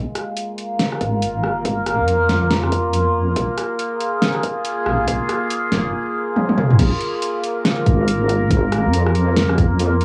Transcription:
Already playing: A#3 F4 A#4
0.15 cross-stick, closed hi-hat
0.36 closed hi-hat
0.58 closed hi-hat
0.79 snare, closed hi-hat
0.92 cross-stick
1.01 G#1, kick, closed hi-hat
1.22 closed hi-hat
1.44 cross-stick
1.65 kick, closed hi-hat
1.86 cross-stick, closed hi-hat
1.99 F2
2.08 closed hi-hat
2.29 snare, closed hi-hat
2.51 snare, closed hi-hat
2.63 cross-stick
2.72 kick, closed hi-hat
2.93 closed hi-hat
3.36 A#1 G#4, kick, closed hi-hat
3.58 cross-stick, closed hi-hat
3.79 closed hi-hat
4.01 closed hi-hat
4.22 snare, closed hi-hat
4.35 cross-stick
4.43 kick, closed hi-hat
4.65 closed hi-hat
4.86 A#1, cross-stick
5.08 A#1, kick, closed hi-hat
5.29 cross-stick, closed hi-hat
5.51 closed hi-hat
5.72 F1, snare, closed hi-hat
6.36 high tom
6.49 high tom
6.58 mid tom
6.71 mid tom
6.79 A#1 A#3 F4 A#4, kick, closed hi-hat, crash
7.01 closed hi-hat
7.22 closed hi-hat
7.43 closed hi-hat
7.65 cross-stick, snare, closed hi-hat
7.86 G#1, kick, closed hi-hat
8.08 closed hi-hat
8.29 closed hi-hat
8.51 kick, closed hi-hat
8.72 cross-stick, closed hi-hat
8.85 F2
8.93 closed hi-hat
9.06 cross-stick
9.15 closed hi-hat
9.36 snare, closed hi-hat
9.49 cross-stick
9.58 kick, closed hi-hat
9.79 closed hi-hat
10.01 closed hi-hat

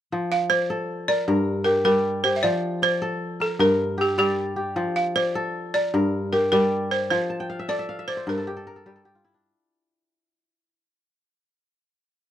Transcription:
0.12 F3
0.32 F5
0.50 C5 D5
0.70 A4
1.08 A#4 D5
1.28 G2 A#4
1.64 G4 A#4
1.85 G3 A#4 D5
2.24 G4 C5
2.36 E5
2.43 F3 D5
2.82 C5 D5
3.02 A4
3.40 A4 A#4
3.59 G2 A#4
3.98 G4
4.18 G3 G4 D5
4.56 G4
4.76 F3
4.96 F5
5.16 C5 D5
5.35 A4
5.74 A#4 D5
5.94 G2 A#4
6.33 G4 A#4
6.52 G3 A#4 D5
6.91 C5
7.11 F3 C5
7.30 A5
7.40 G5
7.50 F5
7.59 E5
7.68 A4 D5
7.79 E5
7.89 F5
7.99 E5
8.08 C5 D5
8.17 C5
8.27 G2 A#4
8.38 A4
8.47 G4
8.57 A4
8.67 A#4
8.76 A4
8.86 G3 G4
8.96 A4
9.05 G4
9.15 F4
9.25 E4
9.34 D4

